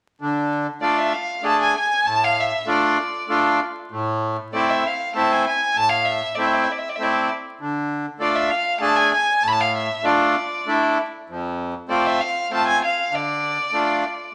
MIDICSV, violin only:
0, 0, Header, 1, 2, 480
1, 0, Start_track
1, 0, Key_signature, -1, "minor"
1, 0, Tempo, 614754
1, 161, Time_signature, 3, 2, 24, 8
1, 11201, End_track
2, 0, Start_track
2, 0, Title_t, "Violin"
2, 0, Program_c, 0, 40
2, 639, Note_on_c, 0, 74, 65
2, 768, Note_on_c, 0, 76, 65
2, 779, Note_off_c, 0, 74, 0
2, 886, Note_on_c, 0, 77, 69
2, 897, Note_off_c, 0, 76, 0
2, 1125, Note_off_c, 0, 77, 0
2, 1145, Note_on_c, 0, 81, 73
2, 1247, Note_off_c, 0, 81, 0
2, 1263, Note_on_c, 0, 80, 85
2, 1366, Note_off_c, 0, 80, 0
2, 1390, Note_on_c, 0, 80, 81
2, 1615, Note_on_c, 0, 81, 91
2, 1627, Note_off_c, 0, 80, 0
2, 1750, Note_on_c, 0, 77, 84
2, 1762, Note_off_c, 0, 81, 0
2, 1876, Note_on_c, 0, 76, 72
2, 1888, Note_off_c, 0, 77, 0
2, 2101, Note_off_c, 0, 76, 0
2, 2120, Note_on_c, 0, 74, 61
2, 2793, Note_off_c, 0, 74, 0
2, 3544, Note_on_c, 0, 74, 70
2, 3673, Note_on_c, 0, 76, 68
2, 3685, Note_off_c, 0, 74, 0
2, 3801, Note_on_c, 0, 77, 65
2, 3813, Note_off_c, 0, 76, 0
2, 4022, Note_off_c, 0, 77, 0
2, 4027, Note_on_c, 0, 81, 72
2, 4157, Note_on_c, 0, 80, 78
2, 4169, Note_off_c, 0, 81, 0
2, 4263, Note_off_c, 0, 80, 0
2, 4276, Note_on_c, 0, 80, 76
2, 4504, Note_on_c, 0, 81, 106
2, 4516, Note_off_c, 0, 80, 0
2, 4601, Note_on_c, 0, 77, 73
2, 4613, Note_off_c, 0, 81, 0
2, 4730, Note_on_c, 0, 76, 74
2, 4742, Note_off_c, 0, 77, 0
2, 4960, Note_on_c, 0, 74, 54
2, 4971, Note_off_c, 0, 76, 0
2, 5045, Note_on_c, 0, 76, 47
2, 5056, Note_off_c, 0, 74, 0
2, 5103, Note_on_c, 0, 74, 53
2, 5115, Note_off_c, 0, 76, 0
2, 5183, Note_on_c, 0, 76, 57
2, 5195, Note_off_c, 0, 74, 0
2, 5247, Note_on_c, 0, 74, 45
2, 5258, Note_off_c, 0, 76, 0
2, 5301, Note_on_c, 0, 76, 53
2, 5312, Note_off_c, 0, 74, 0
2, 5383, Note_on_c, 0, 74, 53
2, 5394, Note_off_c, 0, 76, 0
2, 5434, Note_on_c, 0, 76, 61
2, 5446, Note_off_c, 0, 74, 0
2, 5491, Note_on_c, 0, 74, 62
2, 5503, Note_off_c, 0, 76, 0
2, 5693, Note_off_c, 0, 74, 0
2, 6419, Note_on_c, 0, 74, 69
2, 6526, Note_on_c, 0, 76, 73
2, 6537, Note_off_c, 0, 74, 0
2, 6641, Note_on_c, 0, 77, 77
2, 6653, Note_off_c, 0, 76, 0
2, 6872, Note_off_c, 0, 77, 0
2, 6877, Note_on_c, 0, 81, 89
2, 6996, Note_on_c, 0, 80, 92
2, 7008, Note_off_c, 0, 81, 0
2, 7123, Note_off_c, 0, 80, 0
2, 7135, Note_on_c, 0, 80, 81
2, 7365, Note_on_c, 0, 81, 89
2, 7377, Note_off_c, 0, 80, 0
2, 7402, Note_on_c, 0, 83, 75
2, 7414, Note_off_c, 0, 81, 0
2, 7436, Note_on_c, 0, 81, 96
2, 7448, Note_off_c, 0, 83, 0
2, 7501, Note_on_c, 0, 77, 84
2, 7513, Note_off_c, 0, 81, 0
2, 7615, Note_off_c, 0, 77, 0
2, 7619, Note_on_c, 0, 76, 70
2, 7849, Note_on_c, 0, 74, 69
2, 7861, Note_off_c, 0, 76, 0
2, 8568, Note_off_c, 0, 74, 0
2, 9290, Note_on_c, 0, 74, 66
2, 9422, Note_on_c, 0, 76, 78
2, 9434, Note_off_c, 0, 74, 0
2, 9530, Note_on_c, 0, 77, 75
2, 9541, Note_off_c, 0, 76, 0
2, 9768, Note_off_c, 0, 77, 0
2, 9790, Note_on_c, 0, 81, 83
2, 9890, Note_off_c, 0, 81, 0
2, 9896, Note_on_c, 0, 80, 88
2, 10003, Note_off_c, 0, 80, 0
2, 10033, Note_on_c, 0, 77, 72
2, 10269, Note_on_c, 0, 74, 77
2, 10280, Note_off_c, 0, 77, 0
2, 11201, Note_off_c, 0, 74, 0
2, 11201, End_track
0, 0, End_of_file